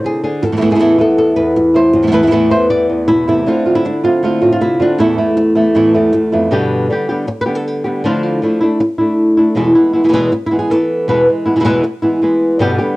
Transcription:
Already playing: D3 D4 C5
0.04 C3 G#4
0.24 D3 G#4
0.42 E2 A4, muted nylon-string guitar stroke
0.52 A2 E3 A3 B3 E4
0.57 A2 E3 A3 B3 E4
0.61 E2 A2 E3 A3 B3 E4
0.70 A2 E3 A3 B3 E4 G#4
0.75 A2 E3 A3 B3 E4
0.79 E2 A2 E3 A3 B3 E4
0.98 E3 A3 B3 E4 A4
1.18 A4
1.36 E2 B4
1.56 muted nylon-string guitar stroke
1.74 E3 A3 B3 E4 C5
1.93 E2, muted nylon-string guitar stroke
2.03 A2 E3 A3 B3 E4
2.07 A2 E3 A3 B3 E4
2.12 E2 A2 E3 A3 B3 E4 B4
2.22 A2 E3 A3 B3 E4
2.27 E2 A2 E3 A3 B3 E4
2.32 A2 E3 A3 B3 E4 B4
2.50 E3 A3 B3 E4 C5
2.70 D5
2.90 E2
3.08 B2 E4, muted nylon-string guitar stroke
3.28 C3 E3 A3 B3 E4
3.46 D3 A3 C4 F4
3.66 A3 C4 F4
3.75 E4
3.85 D4, muted nylon-string guitar stroke
4.04 A3 C4 F4
4.23 D3 A3 C4 F4
4.42 A2 A3 C4 F4
4.52 F4
4.61 C3 E4, muted nylon-string guitar stroke
4.80 D3 A3 C4 D4 F4
4.98 E2 A2 E3 A3 B3 E4
5.18 E3 A3 B3 E4
5.37 muted nylon-string guitar stroke
5.55 E3 A3 B3 E4
5.75 E2 A2 E3 A3 B3 E4
5.94 E2 E3 A3 B3 E4
6.13 E2, muted nylon-string guitar stroke
6.32 F2 E3 A3 B3 E4
6.51 G2 B2 D3 G3 B3 G4
6.90 D3 G3 B3 G4
7.09 D3 G3 B3 G4
7.27 muted nylon-string guitar stroke
7.41 B4
7.46 D3 G3 B3 G4
7.55 A4
7.68 G4
7.84 D3 G3 B3 G4
8.04 D3 F3 A3 D4 E4 F4
8.23 D4
8.42 F3 A3 D4 E4
8.61 A3 D4 E4
8.80 muted nylon-string guitar stroke
8.98 A3 D4 E4
9.37 A3 D4 E4
9.55 E2 B2 E3 G#3 B3 E4
9.75 E3 G#3 B3 E4
9.93 E3 G#3 B3 E4
10.04 B2 E3 G#3 B3 E4
10.09 B2 E3 G#3 B3 E4
10.13 E2 B2 E3 G#3 B3 E4 G#4
10.32 muted nylon-string guitar stroke
10.46 E4
10.51 E3 G#3 B3 E4
10.59 G#4
10.70 E3 B3 E4 A4
11.08 E2 B2 E3 G#3 B3 E4 B4
11.29 E3 G#3
11.46 E3 G#3 B3 E4
11.56 B2 E3 G#3 B3 E4
11.60 B2 E3 G#3 B3 E4
11.65 E2 B2 E3 G#3 B3 E4 B4
11.83 muted nylon-string guitar stroke
12.02 E3 G#3 B3 E4
12.22 E3 G#3 B3 E4
12.59 G2 B2 D3 G3 B3 G4
12.78 D3 G3 B3 G4

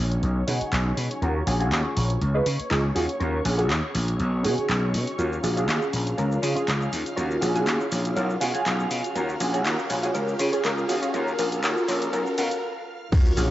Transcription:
Already playing: A#1 C#5 C#6, riser
0.12 closed hi-hat
0.23 B1, closed hi-hat
0.47 B2 C#4 D#4 F#4 G#4, open hi-hat
0.61 muted slap bass stroke, closed hi-hat
0.72 B1, clap, closed hi-hat
0.97 B2, open hi-hat
1.11 closed hi-hat
1.22 D#2 C#4 F4 F#4 A#4, closed hi-hat
1.46 A#1 C#4 F4 F#4 G#4, open hi-hat
1.59 C#4 F4 F#4 G#4, closed hi-hat
1.72 D#2, clap, closed hi-hat
1.97 A#1, open hi-hat
2.10 closed hi-hat
2.21 C#2, closed hi-hat
2.34 D#4 F4 G#4 B4
2.46 C#3, open hi-hat
2.60 muted slap bass stroke, closed hi-hat
2.70 C#2 D#4 F4 G#4 D#5, clap, closed hi-hat
2.95 D#2 C#4 F4 F#4 G#4, open hi-hat
3.09 closed hi-hat
3.20 D#2 C#4 F4 F#4 A#4, closed hi-hat
3.44 A#1 C#4 F4 F#4 G#4, open hi-hat
3.58 C#4 F4 F#4 G#4, closed hi-hat
3.70 D#2, clap, closed hi-hat
3.95 A#1, open hi-hat
4.08 closed hi-hat
4.19 B1, closed hi-hat
4.43 B2 C#4 D#4 F#4 G#4, open hi-hat
4.58 muted slap bass stroke, closed hi-hat
4.69 B1, clap, closed hi-hat
4.94 B2, open hi-hat
5.07 closed hi-hat
5.18 D#2 C#4 F4 F#4 A#4 F5 F6, closed hi-hat, cabasa
5.32 cabasa
5.43 A#1 C#4 F4 F#4 G#4, open hi-hat, cabasa
5.56 C#4 F4 F#4 G#4, closed hi-hat, cabasa
5.68 D#2, clap, closed hi-hat, cabasa
5.82 cabasa
5.93 A#1, open hi-hat, cabasa
6.07 closed hi-hat, cabasa
6.18 C#2 C#4 F4 A#4, closed hi-hat, cabasa
6.32 cabasa
6.42 C#3 C#4 F4 G#4, open hi-hat, cabasa
6.55 C#4 F4 G#4, muted slap bass stroke, closed hi-hat, cabasa
6.68 C#2, clap, closed hi-hat, cabasa
6.82 cabasa
6.92 D#2, open hi-hat, cabasa
7.06 closed hi-hat, cabasa
7.16 D#2 C#4 F4 F#4 A#4, closed hi-hat, cabasa
7.31 cabasa
7.41 A#1 C#4 F4 F#4 G#4, open hi-hat, cabasa
7.54 C#4 F4 F#4 G#4, closed hi-hat, cabasa
7.67 D#2, clap, closed hi-hat, cabasa
7.80 cabasa
7.92 A#1, open hi-hat, cabasa
8.05 closed hi-hat, cabasa
8.16 B1 C#4 F4 F#4 A#4, closed hi-hat, cabasa
8.30 cabasa
8.40 B2 C#4 F4 F#4 G#4, open hi-hat, cabasa
8.54 C#4 F4 F#4 G#4, muted slap bass stroke, closed hi-hat, cabasa
8.66 B1, clap, closed hi-hat, cabasa
8.80 cabasa
8.91 B2, open hi-hat, cabasa
9.04 closed hi-hat, cabasa
9.15 D#2 C#4 F4 F#4 A#4, closed hi-hat, cabasa
9.29 cabasa
9.40 A#1 C#4 F4 F#4 G#4, open hi-hat, cabasa
9.53 C#4 F4 F#4 G#4, closed hi-hat, cabasa
9.65 D#2 C#4 F4 F#4 A#4, clap, closed hi-hat, cabasa
9.79 cabasa
9.90 A#1 C#4 F4 F#4 G#4, open hi-hat, cabasa
10.02 C#4 F4 F#4 G#4, closed hi-hat, cabasa
10.14 C#2 C#4 F4 A#4, closed hi-hat, cabasa
10.28 cabasa
10.39 C#3 C#4 F4 G#4, open hi-hat, cabasa
10.52 C#4 F4 G#4, muted slap bass stroke, closed hi-hat, cabasa
10.64 C#2 C#4 F4 A#4, clap, closed hi-hat, cabasa
10.78 cabasa
10.89 D#2 C#4 F4 F#4 G#4, open hi-hat, cabasa
11.02 C#4 F4 F#4 G#4, closed hi-hat, cabasa
11.13 D#2 C#4 F4 F#4 A#4, closed hi-hat, cabasa
11.28 cabasa
11.38 A#1 C#4 F4 F#4 A#4, open hi-hat, cabasa
11.52 closed hi-hat, cabasa
11.63 D#2 C#4 F4 F#4 A#4, clap, closed hi-hat, cabasa
11.77 cabasa
11.88 A#1 C#4 F4 F#4 A#4, clap, open hi-hat, cabasa
12.02 closed hi-hat, cabasa
12.13 B1 C#4 F4 F#4 A#4, closed hi-hat, cabasa
12.27 cabasa
12.38 B2 C#4 F4 F#4 A#4, open hi-hat, cabasa
12.51 muted slap bass stroke, closed hi-hat, cabasa
13.12 D#2 C#4 F4 F#4 A#4 C#5 C#6, kick, closed hi-hat, crash, impact, cabasa
13.26 cabasa
13.37 A#1 C#4 F4 F#4 G#4, open hi-hat, cabasa

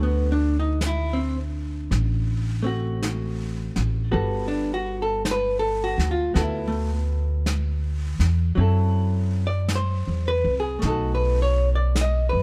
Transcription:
Already playing: D2 D3 A3 F#4
0.03 B3
0.32 D4
0.60 D#4
0.81 brush sweep, snare, hi-hat pedal
0.87 E4
1.13 C4
1.91 A1, brush sweep, snare
2.63 A3 C4 F#4
3.02 brush sweep, snare, hi-hat pedal
3.76 A1, snare
4.11 G1 G3 B3 F#4 A4, brush sweep
4.48 D4
4.74 F#4
5.02 A4
5.25 brush sweep, snare, hi-hat pedal
5.31 B4
5.59 A4
5.84 F#4
5.98 D2, snare
6.11 F4
6.34 D2 B3 F#4 A4, brush sweep, snare
6.41 E4
6.68 A3
7.46 brush sweep, snare, hi-hat pedal
8.19 E2, snare
8.55 F#2 F#3 C4 E4, brush sweep
8.61 A4
9.47 D5
9.68 brush sweep, snare, hi-hat pedal
9.75 C5
10.07 E2
10.28 B4
10.44 C2
10.60 G#4
10.79 B1 A3, brush sweep, snare
10.85 D#4 A4
10.90 F#4
11.15 B4
11.42 C#5
11.75 D5
11.96 brush sweep, snare, hi-hat pedal
12.01 D#5
12.29 F#2 B4

